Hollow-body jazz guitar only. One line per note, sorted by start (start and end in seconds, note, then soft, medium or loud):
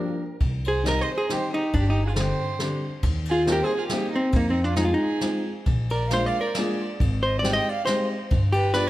0.00 0.16 G4 medium
0.68 0.88 G#4 medium
0.88 1.01 A#4 medium
1.01 1.16 C5 loud
1.18 1.32 G#4 medium
1.32 1.54 G4 loud
1.54 1.75 D#4 medium
1.74 1.89 D4 medium
1.90 2.03 D#4 medium
2.07 2.21 F4 medium
2.21 2.85 G4 medium
3.31 3.50 F4 medium
3.52 3.64 G4 loud
3.64 3.79 G#4 loud
3.79 3.93 F4 medium
3.93 4.16 D#4 medium
4.16 4.37 C4 medium
4.36 4.49 A#3 medium
4.50 4.64 C4 medium
4.64 4.76 D4 medium
4.77 4.85 D#4 medium
4.85 4.93 F4 medium
4.94 5.43 D#4 medium
5.91 6.11 A#4 medium
6.13 6.26 C5 loud
6.26 6.42 D5 loud
6.41 6.58 A#4 medium
6.58 6.81 G#4 medium
7.23 7.39 C5 medium
7.39 7.53 D5 medium
7.53 7.69 D#5 loud
7.69 7.85 D5 medium
7.85 8.08 C5 medium
8.52 8.73 G4 medium
8.74 8.88 B4 loud